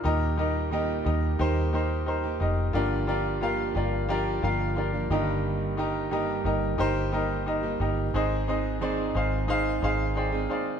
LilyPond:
<<
  \new Staff \with { instrumentName = "Upright piano" } { \time 4/4 \key ees \major \tempo 4 = 89 <ees' g' bes' ees''>8 <ees' g' bes' ees''>8 <ees' g' bes' ees''>8 <ees' g' bes' ees''>8 <ees' g' bes' c''>8 <ees' g' bes' c''>8 <ees' g' bes' c''>8 <ees' g' bes' ees''>8 | <f' g' bes' d''>8 <f' g' bes' d''>8 <f' g' bes' f''>8 <f' g' bes' d''>8 <f' g' bes' d''>8 <f' g' bes' f''>8 <f' g' bes' d''>8 <ees' g' bes' ees''>8~ | <ees' g' bes' ees''>8 <ees' g' bes' ees''>8 <ees' g' bes' ees''>8 <ees' g' bes' ees''>8 <ees' g' bes' c''>8 <ees' g' bes' ees''>8 <ees' g' bes' ees''>8 <ees' g' bes' ees''>8 | <ees' aes' c'' ees''>8 <ees' aes' c'' ees''>8 <ees' aes' c'' d''>8 <ees' aes' c'' f''>8 <ees' aes' c'' f''>8 <ees' aes' c'' f''>8 <ees' aes' c'' d'' g''>8 <ees' aes' c'' d'' f''>8 | }
  \new Staff \with { instrumentName = "Upright piano" } { \clef bass \time 4/4 \key ees \major bes,4. r2 r8 | <g, d>4. r2 <g, g>8~ | <g, g>4 r2. | <aes, ees>4. r2 r8 | }
  \new Staff \with { instrumentName = "Steel-string acoustic guitar" } { \time 4/4 \key ees \major <g bes ees' g'>8 <g bes ees' g'>8 <ees g bes ees' g'>4 <g bes ees' g'>8 <g bes ees' g'>8. <bes ees' g'>8. | <f bes d' g'>8 <f bes d' g'>8 <g, d f bes d' g'>4 <f bes d' g'>8 <f bes d' g'>8. <f bes d' g'>16 <g, ees g bes ees' g'>8~ | <g, ees g bes ees' g'>8 <g bes ees' g'>8 <g, ees g bes ees' g'>4 <g bes ees' g'>8 <g bes ees' g'>8. <g bes ees' g'>8. | <aes c' ees' aes'>8 <aes c' ees' aes'>8 <aes, ees aes c' ees' aes'>4 <aes c' ees' aes'>8 <aes c' ees' aes'>8. <aes c' ees' aes'>8. | }
  \new Staff \with { instrumentName = "Fingered electric bass" } { \clef bass \time 4/4 \key ees \major ees,4. ees,8 ees,4. f,,8 | g,,4. g,,4 g,,4 g,,8~ | g,,4. g,,8 g,,4. g,,8 | aes,,4. aes,,4 aes,,4 r8 | }
>>